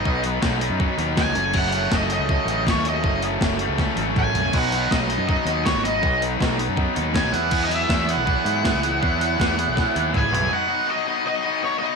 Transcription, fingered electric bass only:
\new Staff \with { instrumentName = "Fingered electric bass" } { \clef bass \time 4/4 \key b \mixolydian \tempo 4 = 161 b,,4 b,,8. fis,8 r16 dis,8. cis,16 fis,,8~ | fis,,4 fis,,8. cis,8 r16 a,,8. dis,8. | fis,,4 fis,,8. cis,8 r16 gis,,8 a,,8 b,,8 | b,,4 b,,8. fis,8 r16 dis,8. gis,,8. |
b,,4 b,,8. fis,8 r16 dis,8. b,,16 e,8~ | e,4 e,8. b,,8 r16 gis,8. cis,8. | e,4 e,8. b,,8 r16 dis,8 cis,8 b,,8 | r1 | }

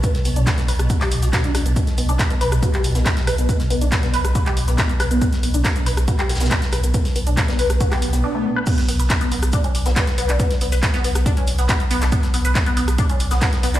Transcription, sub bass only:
\new Staff \with { instrumentName = "Sub bass" } { \clef bass \time 4/4 \key b \minor \tempo 4 = 139 r8 b,,16 b,,16 r8 b,,16 b,,16 r8 b,,16 b,,16 r8 b,,16 b,,16 | r8 b,,16 b,,16 r8 b,,16 b,,16 r8 b,,16 b,,16 r8 b,,16 b,,16 | r8 b,,16 b,,16 r8 b,,16 b,,16 r8 b,,16 b,,16 r8 b,,16 b,,16 | r8 b,,16 b,,16 r8 b,,16 b,,16 r8 b,,16 b,,16 r8 b,,16 b,,16 |
r8 b,,16 b,,16 r8 b,,16 b,,16 r8 b,,16 b,,16 r4 | r8 b,,16 b,,16 r8 b,,16 b,,16 r8 b,,16 b,,16 r8 b,,16 b,,16 | r8 b,,16 b,,16 r8 b,,16 b,,16 r8 b,,16 b,,16 r8 b,,16 b,,16 | r8 b,,16 b,,16 r8 b,,16 b,,16 r8 b,,16 b,,16 r8 b,,16 b,,16 | }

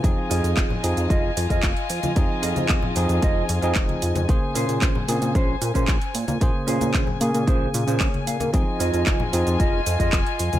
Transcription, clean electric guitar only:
\new Staff \with { instrumentName = "Clean electric guitar" } { \time 4/4 \key bes \minor \tempo 4 = 113 r8 <f' aes' ees''>8. r8. <f' aes' ees''>8 r16 <f' aes' ees''>16 r4 | r8 <f' aes' ees''>8. r8. <f' aes' ees''>8 r16 <f' aes' ees''>16 r4 | r8 <des' aes' c''>8. r8. <des' aes' c''>8 r16 <des' aes' c''>16 r4 | r8 <des' aes' c''>8. r8. <des' aes' c''>8 r16 <des' aes' c''>16 des''8 f''8 |
r8 <f' aes' ees''>8. r8. <f' aes' ees''>8 r16 <f' aes' ees''>16 r4 | }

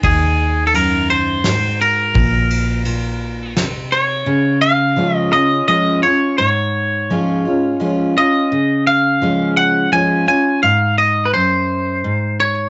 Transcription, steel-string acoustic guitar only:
\new Staff \with { instrumentName = "Steel-string acoustic guitar" } { \clef bass \time 3/4 \key des \major \tempo 4 = 85 << { r2. | r2. | r4 <f aes des' f'>8 <des' f'>8 <f aes des' f'>8 <des' f'>8 | r4 <f aes des' f'>8 <des' f'>8 <f aes des' f'>8 <des' f'>8 |
r4 <f aes des'>4 <f aes des' f'>8 <des' f'>8 | r2. | } \\ { ees4 ges,4 aes,4 | bes,4 bes,4 c4 | des2 r4 | aes,2 r4 |
des2 r4 | aes,4 ges,4 aes,4 | } >> }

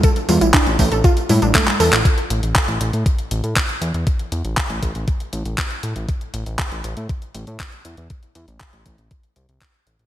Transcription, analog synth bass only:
\new Staff \with { instrumentName = "Analog synth bass" } { \clef bass \time 4/4 \key a \minor \tempo 4 = 119 r8 e,16 a,,16 r16 a,,16 a,,16 a,,16 r8 a,16 a,,16 r8 e,16 a,,16 | r8 a,,16 a,,16 r16 a,,16 a,,16 a,16 r8 a,,16 a,16 r8 e,16 e,16 | r8 e,16 a,,16 r16 a,,16 a,,16 a,,16 r8 a,,16 a,,16 r8 a,16 a,,16 | r8 a,,16 a,,16 r16 a,,16 a,,16 a,16 r8 a,,16 a,16 r8 e,16 e,16 |
r8 e,16 a,,16 r16 a,,16 a,,16 a,,16 r8 c,16 c,16 r8 a,,16 a,,16 | }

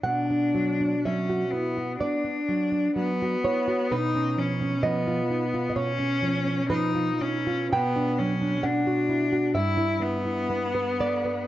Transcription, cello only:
\new Staff \with { instrumentName = "Cello" } { \time 4/4 \key b \minor \tempo 4 = 63 d'4 cis'8 b8 d'4 b4 | dis'8 cis'8 b4 cis'4 dis'8 cis'8 | \key e \dorian b8 cis'8 d'4 e'8 b4. | }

